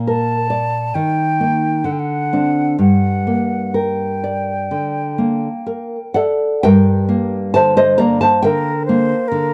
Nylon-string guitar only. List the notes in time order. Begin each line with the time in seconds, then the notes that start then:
Already playing: A#2 A#3
0.07 A#4
0.50 D5
0.95 D#3
1.40 A#3 D#4
1.84 D3
2.33 C4 D4
2.79 G2
3.27 A#3
3.74 A#4
4.24 D5
4.71 D3
5.18 A#3
5.66 A#4
6.14 A4 D5 F#5
6.63 G2 A#4 G5
7.09 A#3
7.54 D3 C5 A5
7.77 C5 D#5
7.98 A#3 D5 A#5
8.21 C5 A5
8.43 D3 A#4 G5
8.89 A#3
9.32 D3